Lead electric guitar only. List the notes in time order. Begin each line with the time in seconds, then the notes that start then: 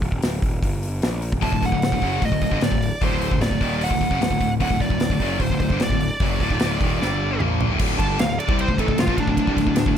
1.43 A5
1.66 F#5
2.25 D#5
2.64 D5
3.04 C5
3.42 D5
3.84 F#5
4.22 F#5
4.62 F#5
4.81 D5
5.41 C5
5.60 C5
5.83 D5
7.99 A5
8.19 F5
8.40 D5
8.61 C5
8.80 A4
9.00 F4
9.20 D4